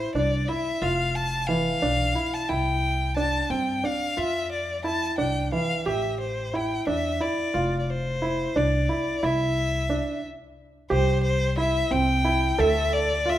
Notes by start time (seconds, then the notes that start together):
Already playing: C5
0.15 C2 D4 D5
0.48 E4 E5
0.81 F1 F4 F5
1.16 A5
1.47 E3 F5
1.82 B1 D4
2.15 E4
2.34 A5
2.49 C2 E4 G5
3.17 D4 A5
3.50 G2 C4 G5
3.84 D4 F5
4.17 F2 F4 E5
4.52 D5
4.84 E4 A5
5.18 C2 D4 G5
5.52 E3 F5
5.86 A1 G4 E5
6.21 C5
6.54 E4 G5
6.87 E2 D4 E5
7.20 E4 D5
7.54 F1 F4
7.79 D5
7.90 C5
8.22 E4
8.56 C2 D4 D5
8.89 E4
9.23 C2 E4 E5
9.89 D4
10.90 C2 G4 C5
11.24 C5
11.57 E4 E5
11.91 C2 C4 G5
12.25 E4
12.59 D2 A4 E5
12.93 D5
13.26 F4 E5